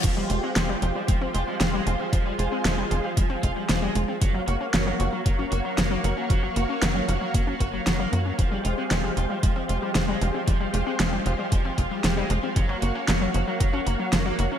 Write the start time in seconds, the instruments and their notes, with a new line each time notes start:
0.04 analog synth bass F1, overdriven electric guitar F3, synth arpeggio sound F3, analog synth pad G#3 F4 G4 C5, kick, closed hi-hat, crash
0.17 overdriven electric guitar F3, synth arpeggio sound G3
0.30 analog synth bass F1, synth arpeggio sound G#3, overdriven electric guitar F4, closed hi-hat
0.43 overdriven electric guitar G#3, synth arpeggio sound C4
0.56 analog synth bass F1, overdriven electric guitar F3, synth arpeggio sound G#3, snare, closed hi-hat
0.69 overdriven electric guitar F3, synth arpeggio sound G3
0.82 analog synth bass F1, synth arpeggio sound F3, overdriven electric guitar F4, closed hi-hat
0.95 overdriven electric guitar F3, synth arpeggio sound G3
1.08 analog synth bass F1, overdriven electric guitar F3, synth arpeggio sound G#3, kick, closed hi-hat
1.21 overdriven electric guitar F3, synth arpeggio sound C4
1.34 analog synth bass F1, synth arpeggio sound G#3, overdriven electric guitar F4, closed hi-hat
1.47 overdriven electric guitar F3, synth arpeggio sound G3
1.60 analog synth bass F1, synth arpeggio sound F3, overdriven electric guitar F3, snare, closed hi-hat
1.74 synth arpeggio sound G3, overdriven electric guitar G#3
1.87 analog synth bass F1, synth arpeggio sound G#3, overdriven electric guitar F4, closed hi-hat
2.00 overdriven electric guitar F3, synth arpeggio sound C4
2.13 analog synth bass F1, synth arpeggio sound F3, overdriven electric guitar F3, analog synth pad G#4, kick, closed hi-hat
2.26 overdriven electric guitar F3, synth arpeggio sound G3
2.39 analog synth bass F1, synth arpeggio sound G#3, overdriven electric guitar F4, closed hi-hat
2.52 overdriven electric guitar G#3, synth arpeggio sound C4
2.65 analog synth bass F1, overdriven electric guitar F3, synth arpeggio sound G#3, snare, closed hi-hat
2.78 overdriven electric guitar F3, synth arpeggio sound G3
2.91 analog synth bass F1, synth arpeggio sound F3, overdriven electric guitar F4, closed hi-hat
3.04 overdriven electric guitar F3, synth arpeggio sound G3
3.17 analog synth bass F1, overdriven electric guitar F3, synth arpeggio sound G#3, kick, closed hi-hat
3.30 overdriven electric guitar F3, synth arpeggio sound C4
3.43 analog synth bass F1, synth arpeggio sound G#3, overdriven electric guitar F4, kick, closed hi-hat
3.56 overdriven electric guitar F3, synth arpeggio sound G3
3.69 analog synth bass F1, synth arpeggio sound F3, overdriven electric guitar F3, snare, closed hi-hat
3.82 synth arpeggio sound G3, overdriven electric guitar G#3
3.95 analog synth bass F1, synth arpeggio sound G#3, overdriven electric guitar F4, closed hi-hat
4.08 overdriven electric guitar F3, synth arpeggio sound C4
4.21 analog synth bass F#1, synth arpeggio sound F3, overdriven electric guitar F#3, analog synth pad A#3 F#4 C#5 F5, kick, closed hi-hat
4.34 synth arpeggio sound F#3, overdriven electric guitar F#3
4.47 analog synth bass F#1, synth arpeggio sound A#3, overdriven electric guitar F#4, closed hi-hat
4.61 overdriven electric guitar A#3, synth arpeggio sound C#4
4.74 analog synth bass F#1, overdriven electric guitar F#3, synth arpeggio sound A#3, snare, closed hi-hat
4.87 overdriven electric guitar F#3, synth arpeggio sound F#3
5.00 analog synth bass F#1, synth arpeggio sound F3, overdriven electric guitar F#4, closed hi-hat
5.13 overdriven electric guitar F#3, synth arpeggio sound F#3
5.26 analog synth bass F#1, overdriven electric guitar F#3, synth arpeggio sound A#3, kick, closed hi-hat
5.39 overdriven electric guitar F#3, synth arpeggio sound C#4
5.52 analog synth bass F#1, synth arpeggio sound A#3, overdriven electric guitar F#4, closed hi-hat
5.65 synth arpeggio sound F#3, overdriven electric guitar F#3
5.78 analog synth bass F#1, synth arpeggio sound F3, overdriven electric guitar F#3, snare, closed hi-hat
5.91 synth arpeggio sound F#3, overdriven electric guitar A#3
6.04 analog synth bass F#1, synth arpeggio sound A#3, overdriven electric guitar F#4, closed hi-hat
6.17 overdriven electric guitar F#3, synth arpeggio sound C#4
6.30 analog synth bass F#1, synth arpeggio sound F3, overdriven electric guitar F#3, kick, closed hi-hat
6.43 synth arpeggio sound F#3, overdriven electric guitar F#3
6.56 analog synth bass F#1, synth arpeggio sound A#3, overdriven electric guitar F#4, closed hi-hat
6.69 overdriven electric guitar A#3, synth arpeggio sound C#4
6.82 analog synth bass F#1, overdriven electric guitar F#3, synth arpeggio sound A#3, snare, closed hi-hat
6.95 synth arpeggio sound F#3, overdriven electric guitar F#3
7.08 analog synth bass F#1, synth arpeggio sound F3, overdriven electric guitar F#4, closed hi-hat
7.21 synth arpeggio sound F#3, overdriven electric guitar F#3
7.34 analog synth bass F#1, overdriven electric guitar F#3, synth arpeggio sound A#3, kick, closed hi-hat
7.47 overdriven electric guitar F#3, synth arpeggio sound C#4
7.60 analog synth bass F#1, synth arpeggio sound A#3, overdriven electric guitar F#4, kick, closed hi-hat
7.73 overdriven electric guitar F#3, synth arpeggio sound F#3
7.86 analog synth bass F#1, synth arpeggio sound F3, overdriven electric guitar F#3, snare, closed hi-hat
7.99 synth arpeggio sound F#3, overdriven electric guitar A#3
8.13 analog synth bass F#2, synth arpeggio sound A#3, overdriven electric guitar F#4, closed hi-hat
8.26 overdriven electric guitar F#3, synth arpeggio sound C#4
8.38 analog synth bass F1, synth arpeggio sound F3, overdriven electric guitar F3, analog synth pad G#3 G4 C5, kick, closed hi-hat
8.51 overdriven electric guitar F3, synth arpeggio sound G3
8.65 analog synth bass F1, synth arpeggio sound G#3, overdriven electric guitar F4, closed hi-hat
8.78 overdriven electric guitar G#3, synth arpeggio sound C4
8.91 analog synth bass F1, overdriven electric guitar F3, synth arpeggio sound G#3, snare, closed hi-hat
9.04 overdriven electric guitar F3, synth arpeggio sound G3
9.17 analog synth bass F1, synth arpeggio sound F3, overdriven electric guitar F4, closed hi-hat
9.30 overdriven electric guitar F3, synth arpeggio sound G3
9.43 analog synth bass F1, overdriven electric guitar F3, synth arpeggio sound G#3, kick, closed hi-hat
9.56 overdriven electric guitar F3, synth arpeggio sound C4
9.69 analog synth bass F1, synth arpeggio sound G#3, overdriven electric guitar F4, closed hi-hat
9.82 overdriven electric guitar F3, synth arpeggio sound G3
9.95 analog synth bass F1, synth arpeggio sound F3, overdriven electric guitar F3, snare, closed hi-hat
10.08 synth arpeggio sound G3, overdriven electric guitar G#3
10.21 analog synth bass F1, synth arpeggio sound G#3, overdriven electric guitar F4, closed hi-hat
10.34 overdriven electric guitar F3, synth arpeggio sound C4
10.47 analog synth bass F1, overdriven electric guitar F3, synth arpeggio sound F3, kick, closed hi-hat
10.60 overdriven electric guitar F3, synth arpeggio sound G3
10.74 analog synth bass F1, synth arpeggio sound G#3, overdriven electric guitar F4, closed hi-hat
10.86 overdriven electric guitar G#3, synth arpeggio sound C4
10.99 analog synth bass F1, overdriven electric guitar F3, synth arpeggio sound G#3, snare, closed hi-hat
11.12 overdriven electric guitar F3, synth arpeggio sound G3
11.25 analog synth bass F1, synth arpeggio sound F3, overdriven electric guitar F4, closed hi-hat
11.38 overdriven electric guitar F3, synth arpeggio sound G3
11.52 analog synth bass F1, overdriven electric guitar F3, synth arpeggio sound G#3, kick, closed hi-hat
11.65 overdriven electric guitar F3, synth arpeggio sound C4
11.78 analog synth bass F1, synth arpeggio sound G#3, overdriven electric guitar F4, kick, closed hi-hat
11.91 overdriven electric guitar F3, synth arpeggio sound G3
12.04 analog synth bass F1, overdriven electric guitar F3, synth arpeggio sound F3, snare, closed hi-hat
12.17 synth arpeggio sound G3, overdriven electric guitar G#3
12.30 analog synth bass F1, synth arpeggio sound G#3, overdriven electric guitar F4, closed hi-hat
12.43 overdriven electric guitar F3, synth arpeggio sound C4
12.56 analog synth bass F#1, synth arpeggio sound F3, overdriven electric guitar F#3, analog synth pad A#3 F#4 C#5 F5, kick, closed hi-hat
12.69 overdriven electric guitar F#3, synth arpeggio sound F#3
12.82 analog synth bass F#1, synth arpeggio sound A#3, overdriven electric guitar F#4, closed hi-hat
12.95 overdriven electric guitar A#3, synth arpeggio sound C#4
13.08 analog synth bass F#1, overdriven electric guitar F#3, synth arpeggio sound A#3, snare, closed hi-hat
13.21 overdriven electric guitar F#3, synth arpeggio sound F#3
13.34 analog synth bass F#1, synth arpeggio sound F3, overdriven electric guitar F#4, closed hi-hat
13.47 overdriven electric guitar F#3, synth arpeggio sound F#3
13.60 analog synth bass F#1, overdriven electric guitar F#3, synth arpeggio sound A#3, kick, closed hi-hat
13.73 overdriven electric guitar F#3, synth arpeggio sound C#4
13.86 analog synth bass F#1, synth arpeggio sound A#3, overdriven electric guitar F#4, closed hi-hat
13.99 overdriven electric guitar F#3, synth arpeggio sound F#3
14.12 analog synth bass F#1, synth arpeggio sound F3, overdriven electric guitar F#3, snare, closed hi-hat
14.25 synth arpeggio sound F#3, overdriven electric guitar A#3
14.38 analog synth bass F#1, synth arpeggio sound A#3, overdriven electric guitar F#4, closed hi-hat
14.51 overdriven electric guitar F#3, synth arpeggio sound C#4